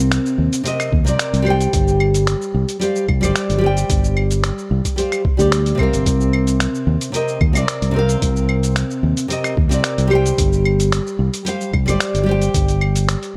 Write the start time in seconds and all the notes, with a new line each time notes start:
Already playing: C2 C3 C4 A#4 F5
0.12 finger snap, closed hi-hat, cabasa
0.26 cabasa
0.38 D#2
0.53 closed hi-hat, cabasa
0.64 C3 C4 A#4 D#5, closed hi-hat, cabasa
0.80 finger snap, cabasa, claves
0.92 D#2, kick
1.05 C2 C3 C4 A#4 D5, closed hi-hat, cabasa
1.19 finger snap, closed hi-hat, cabasa
1.33 C2, closed hi-hat, cabasa
1.42 G3 G4
1.46 C5 G5, claves
1.61 closed hi-hat, cabasa
1.73 G1, kick, closed hi-hat, cabasa
1.88 cabasa
2.00 claves
2.14 closed hi-hat, cabasa
2.27 finger snap, closed hi-hat, cabasa
2.42 cabasa
2.54 C2
2.69 closed hi-hat, cabasa
2.79 G3 G4 C5 F5, closed hi-hat, cabasa
2.96 cabasa
3.08 C2, kick, claves
3.21 G1 G3 G4 C5 D5, closed hi-hat, cabasa, claves
3.36 finger snap, closed hi-hat, cabasa
3.50 G1, closed hi-hat, cabasa
3.58 G3 G4
3.64 C5 G5
3.77 closed hi-hat, cabasa
3.90 G1, kick, closed hi-hat, cabasa
4.04 cabasa
4.17 claves
4.31 closed hi-hat, cabasa
4.44 finger snap, closed hi-hat, cabasa
4.58 cabasa
4.71 C2
4.85 kick, closed hi-hat, cabasa
4.96 G3 G4 C5 F5, closed hi-hat, cabasa
5.12 finger snap, cabasa, claves
5.25 kick
5.37 D2 G3 G4 D5, closed hi-hat, cabasa
5.52 finger snap, closed hi-hat, cabasa
5.66 closed hi-hat, cabasa
5.75 C2 C3 C4, kick
5.79 A#4 F5, claves
5.93 G1, closed hi-hat, cabasa
6.06 C2, kick, closed hi-hat, cabasa
6.21 cabasa
6.33 claves
6.47 closed hi-hat, cabasa
6.60 finger snap, closed hi-hat, cabasa
6.75 cabasa
6.87 D#2
7.01 closed hi-hat, cabasa
7.12 C3 C4 A#4, closed hi-hat, cabasa
7.16 D#5
7.28 cabasa
7.41 D#2, kick, claves
7.53 C2 C3 C4 A#4 D5, closed hi-hat, cabasa, claves
7.68 finger snap, closed hi-hat, cabasa
7.82 C2, closed hi-hat, cabasa
7.91 C3 C4
7.96 A#4 F5
8.09 closed hi-hat, cabasa
8.22 C2, kick, closed hi-hat, cabasa
8.36 cabasa
8.49 claves
8.63 closed hi-hat, cabasa
8.76 finger snap, closed hi-hat, cabasa
8.91 cabasa
9.03 D#2
9.17 closed hi-hat, cabasa
9.28 C3 C4 A#4 D#5, closed hi-hat, cabasa
9.44 finger snap, cabasa, claves
9.57 D#2, kick
9.69 C2 C3 C4 A#4 D5, closed hi-hat, cabasa
9.84 finger snap, closed hi-hat, cabasa
9.98 C2, closed hi-hat, cabasa
10.07 G3 G4, claves
10.12 C5 G5
10.26 closed hi-hat, cabasa
10.38 G1, kick, closed hi-hat, cabasa
10.53 cabasa
10.65 claves
10.80 closed hi-hat, cabasa
10.92 finger snap, closed hi-hat, cabasa
11.07 cabasa
11.19 C2
11.34 closed hi-hat, cabasa
11.45 G3 G4 C5 F5, closed hi-hat, cabasa
11.61 cabasa
11.73 C2, kick, claves
11.86 G1 G3 G4 C5 D5, closed hi-hat, cabasa, claves
12.00 finger snap, closed hi-hat, cabasa
12.14 G1, closed hi-hat, cabasa
12.23 G3 G4
12.29 C5 G5
12.42 closed hi-hat, cabasa
12.54 G1, kick, closed hi-hat, cabasa
12.68 closed hi-hat, cabasa
12.81 claves
12.96 closed hi-hat, cabasa
13.09 finger snap, closed hi-hat, cabasa
13.23 closed hi-hat, cabasa